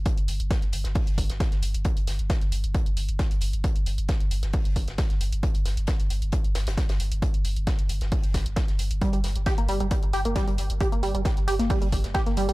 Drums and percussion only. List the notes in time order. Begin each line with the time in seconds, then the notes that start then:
0.06 kick, closed hi-hat
0.18 closed hi-hat
0.28 closed hi-hat, open hi-hat
0.40 closed hi-hat
0.51 kick, snare, closed hi-hat
0.62 closed hi-hat
0.73 closed hi-hat, open hi-hat
0.84 snare, closed hi-hat
0.95 kick, closed hi-hat, open hi-hat
1.07 closed hi-hat
1.18 kick, closed hi-hat, open hi-hat
1.30 snare, closed hi-hat
1.40 kick, snare, closed hi-hat
1.52 snare, closed hi-hat
1.62 closed hi-hat, open hi-hat
1.74 closed hi-hat
1.85 kick, closed hi-hat
1.97 closed hi-hat
2.07 snare, closed hi-hat, open hi-hat
2.19 closed hi-hat
2.30 kick, snare, closed hi-hat
2.41 closed hi-hat
2.52 closed hi-hat, open hi-hat
2.64 closed hi-hat
2.75 kick, closed hi-hat
2.86 closed hi-hat
2.97 closed hi-hat, open hi-hat
3.09 closed hi-hat
3.19 kick, snare, closed hi-hat
3.31 closed hi-hat
3.41 closed hi-hat, open hi-hat
3.53 closed hi-hat
3.64 kick, closed hi-hat
3.76 closed hi-hat
3.86 closed hi-hat, open hi-hat
3.98 closed hi-hat
4.08 kick, snare, closed hi-hat
4.21 closed hi-hat
4.31 closed hi-hat, open hi-hat
4.43 snare, closed hi-hat
4.53 kick, closed hi-hat, open hi-hat
4.65 closed hi-hat
4.76 kick, closed hi-hat, open hi-hat
4.88 snare, closed hi-hat
4.98 kick, snare, closed hi-hat
5.10 snare, closed hi-hat
5.21 closed hi-hat, open hi-hat
5.33 closed hi-hat
5.43 kick, closed hi-hat
5.54 closed hi-hat
5.65 snare, closed hi-hat, open hi-hat
5.77 closed hi-hat
5.87 kick, snare, closed hi-hat
6.00 closed hi-hat
6.10 closed hi-hat, open hi-hat
6.22 closed hi-hat
6.32 kick, closed hi-hat
6.44 closed hi-hat
6.55 snare, closed hi-hat, open hi-hat
6.67 snare, closed hi-hat
6.78 kick, snare, closed hi-hat
6.89 snare, closed hi-hat
7.00 closed hi-hat, open hi-hat
7.12 closed hi-hat
7.22 kick, closed hi-hat
7.34 closed hi-hat
7.45 closed hi-hat, open hi-hat
7.56 closed hi-hat
7.67 kick, snare, closed hi-hat
7.79 closed hi-hat
7.89 closed hi-hat, open hi-hat
8.01 snare, closed hi-hat
8.12 kick, closed hi-hat, open hi-hat
8.24 closed hi-hat
8.34 kick, snare, closed hi-hat, open hi-hat
8.46 closed hi-hat
8.56 kick, snare, closed hi-hat
8.68 snare, closed hi-hat
8.79 closed hi-hat, open hi-hat
8.91 closed hi-hat
9.02 kick, closed hi-hat
9.13 closed hi-hat
9.24 snare, closed hi-hat, open hi-hat
9.36 closed hi-hat
9.46 kick, snare, closed hi-hat
9.58 closed hi-hat
9.69 closed hi-hat, open hi-hat
9.80 closed hi-hat
9.91 kick, closed hi-hat
10.03 closed hi-hat
10.13 closed hi-hat, open hi-hat
10.25 closed hi-hat
10.36 kick, snare, closed hi-hat
10.48 closed hi-hat
10.58 closed hi-hat, open hi-hat
10.70 closed hi-hat
10.80 kick, closed hi-hat
10.92 closed hi-hat
11.03 closed hi-hat, open hi-hat
11.15 closed hi-hat
11.25 kick, snare, closed hi-hat
11.37 closed hi-hat
11.48 closed hi-hat, open hi-hat
11.60 snare, closed hi-hat
11.70 kick, closed hi-hat, open hi-hat
11.82 closed hi-hat
11.92 kick, closed hi-hat, open hi-hat
12.04 snare, closed hi-hat
12.14 kick, snare, closed hi-hat
12.26 snare, closed hi-hat
12.37 closed hi-hat, open hi-hat
12.49 closed hi-hat